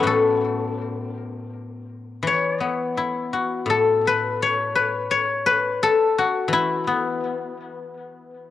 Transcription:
guzheng
Already playing: A3 B3 C#4 B4 C#5
0.00 A2 E4 F#4
0.07 A4
2.23 E3
2.27 C#5
2.49 D5
2.60 B3
2.71 E5
2.97 E4
3.33 F#4
3.66 A2
3.70 A4
4.07 B4
4.42 C#5
4.75 B4
5.11 C#5
5.46 B4
5.83 A4
6.18 F#4
6.48 E3
6.53 E4
6.87 B3

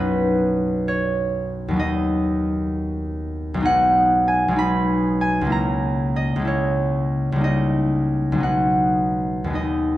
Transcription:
harp
Already playing: B1 F#3 B3 D#4 B4 F#5
0.88 C#5
1.68 D#2 F#3
1.74 B3 D#4
1.79 D#5
3.54 B1 G#3
3.60 B3 D#4
3.65 F#5
4.28 G#5
4.48 B1 G#3
4.53 B3 D#4
4.59 B5
5.21 G#5
5.41 C#2 G#3
5.47 A#3 E4
5.52 A#5
6.16 D#5
6.36 C#2 G#3
6.42 A#3 E4
6.47 C#5
7.32 C#2 G3
7.38 A#3 D#4
7.44 D#5
8.32 B1 G#3
8.38 B3 D#4
8.43 F#5
9.44 D#2 G#3
9.50 B3 D#4
9.55 D#5

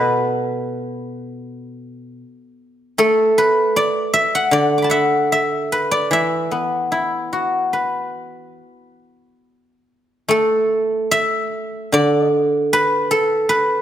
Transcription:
guzheng
Already playing: B2 F#3 A4 B4 E5
2.98 A3 A4
3.38 B4
3.76 D5
4.14 E5
4.35 F#5
4.51 D3 D5
4.78 D6
4.82 A5 B5
4.90 E5 F#5
5.32 E5
5.72 B4
5.91 D5
6.11 E3 E5
6.51 B3
6.92 E4
7.33 F#4
7.73 B4
10.28 A3 A4
11.11 E5
11.92 D3 D5
12.73 B4
13.11 A4
13.49 B4

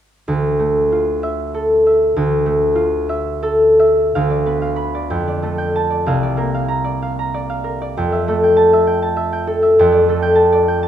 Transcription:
harp
0.28 D2
0.59 A3
0.92 F4
1.23 E5
1.54 A4
1.86 E5
2.16 D2
2.46 A3
2.75 F4
3.09 E5
3.43 A4
3.79 E5
4.15 D2 F5
4.30 D5
4.46 B3 B4
4.62 F5
4.76 B5
4.95 D5
5.10 F2 G5
5.28 D5
5.42 A3 A4
5.58 G5
5.76 A5
5.90 D5
6.06 C2 F5
6.23 D5
6.37 A#3 A#4
6.54 F5
6.68 A#5
6.84 D5
7.02 F5
7.19 A#5
7.34 D5
7.50 F5
7.64 A#4
7.82 D5
7.97 F2 G5
8.12 E5
8.28 A3 A4
8.43 G5
8.57 A5
8.73 E5
8.87 G5
9.02 A5
9.17 E5
9.33 G5
9.47 A4
9.63 E5
9.79 F2 G5
9.92 D5
10.08 A3 A4
10.22 G5
10.35 A5
10.52 D5
10.68 G5
10.83 A5

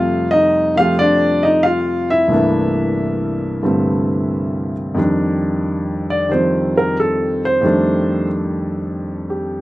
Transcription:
grand piano
Already playing: F2 C3 G3 A3 F4 F5
0.31 D#4 D#5
0.76 F3 A3 C4 G4 F5
0.80 F4
0.99 D4 D5
1.43 D#4 D#5
1.63 F4 F5
2.10 E4 E5
2.28 C2 G2 E3 A3
2.32 A#3 D4
3.63 G2 D3 G3 A3 C4
4.94 F2 D#3 G3
4.99 D4
6.10 D5
6.29 D#3 F3 G3 C4 C5
6.77 A#4
7.00 A4
7.45 C5
7.61 F2 D#3 G3
7.65 A3 D4
9.30 G4

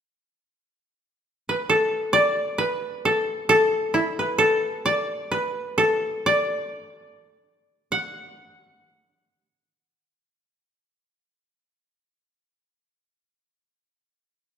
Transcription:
koto
1.49 B4
1.70 A4
2.13 D5
2.58 B4
3.05 A4
3.49 A4
3.94 E4
4.19 B4
4.38 A4
4.86 D5
5.31 B4
5.78 A4
6.26 D5
7.92 F#5

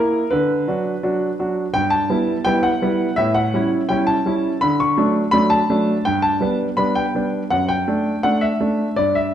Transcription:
grand piano
Already playing: A#3 E4 A#4
0.30 D3 B4
0.68 F#3 D4 F#4
1.03 F#3 D4 F#4
1.39 F#3 D4 F#4
1.74 G2 G5
1.90 A5
2.10 G3 B3 E4
2.45 G3 B3 E4 G5
2.63 F#5
2.82 G3 B3 E4
3.16 A2 E5
3.35 F#5
3.54 G3 C#4 E4
3.89 G3 C#4 E4 G5
4.07 A5
4.26 G3 C#4 E4
4.61 D3 B5
4.80 C#6
4.97 F#3 A3 D4
5.31 F#3 A3 D4 B5
5.50 A5
5.70 F#3 A3 D4
6.05 G2 G5
6.22 A5
6.40 G3 B3 D4
6.77 G3 B3 D4 B5
6.95 G5
7.15 G3 B3 D4
7.50 F#2 F#5
7.69 G5
7.88 A3 D4
8.23 A3 D4 F#5
8.41 E5
8.61 A3 D4
8.96 G2 D5
9.15 E5

